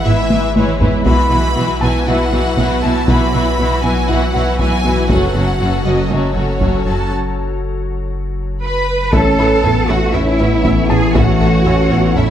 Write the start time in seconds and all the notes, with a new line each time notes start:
Already playing: G#1 G#3 E4 B4 E5 C#6
0.04 G#1 G#2 E3 G#3 B3 E4 B4 E5
0.29 G#1 G#2 E3 E4 B4, taiko high
0.55 G#1 G#2 E3 E4 B4 C#5, taiko high
0.80 G#1 G#2 E3 B3 E4 B4, taiko low
1.05 B1 B2 E3 F#3 B3 E4 F#4 B4 E5 B5, taiko
1.30 B1 B2 E3 E4 F#4 B4
1.55 B1 B2 E3 E4 F#4 B4
1.81 B1 B2 E3 B3 E4 F#4 B4 G#5 A5
2.06 B1 B2 E3 B3 E4 F#4 B4 F#5
2.31 B1 B2 E3 E4 F#4 B4
2.57 B1 B2 E3 B3 E4 F#4 B4, taiko
2.83 B1 B2 E3 E4 F#4 B4 A5
3.08 B1 B2 E3 B3 E4 F#4 B4 B5, taiko
3.33 B1 B2 E3 E4 F#4 B4
3.58 B1 B2 E3 E4 F#4 B4
3.83 B1 B2 E3 B3 E4 F#4 B4 G#5
4.07 B1 B2 E3 B3 E4 F#4 B4 F#5
4.32 B1 B2 E3 E4 F#4 B4 F#5
4.59 B1 B2 E3 B3 E4 F#4 B4 G#5, taiko
4.84 B1 B2 E3 E4 F#4 B4
5.09 F#1 F#2 F#3 A3 C#4 F#4 A4 C#5 F#5, taiko
5.34 F#1 F#2 F#3 C#4 F#4 A4
5.59 F#1 F#2 F#3 C#4 F#4 A4
5.85 F#1 F#2 F#3 C#4 F#4 A4 D#5
6.10 F#1 F#2 F#3 A3 C#4 F#4 A4 C#5 D#5
6.35 F#1 F#2 F#3 C#4 F#4 A4
6.60 F#1 F#2 F#3 C#4 F#4 A4, taiko
6.86 F#1 F#2 F#3 C#4 F#4 A4 A5
8.62 B4 B5
9.12 A1 E3 A3 C#4 E4 A4 C#5 E5 A5, taiko
9.38 A1 C#4 E4 A4 B4 E5 B5
9.63 A1 B3 C#4 E4 E5, taiko low
9.88 A1 A3 C#4 E4 F#4 E5 F#5
10.13 A1 C#4 E4 E5, taiko low
10.39 A1 B3 C#4 E4 E5
10.64 A1 A3 C#4 E4 E5, taiko
10.90 A1 C#4 E4 G#4 E5 G#5 A5
11.15 A1 A3 C#4 E4 F#4 E5 F#5, taiko
11.40 A1 C#4 E4 A4 E5
11.65 A1 C#4 E4 E5, taiko low
11.90 A1 A3 B3 C#4 E4 E5
12.16 A1 C#4 E4 E5, taiko low